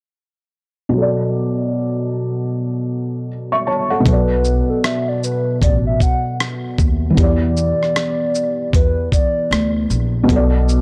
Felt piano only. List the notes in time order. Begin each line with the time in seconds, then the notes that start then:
0.89 B2
0.93 F#3
0.98 A4 D5
3.52 E5 C#6
3.67 C#5 A5
3.90 A4 F#5
4.00 B2
4.05 F#3
4.09 A4 D5
7.10 E3 B3
7.19 G4
7.23 D5
10.23 B2
10.27 B3
10.32 A4
10.36 D5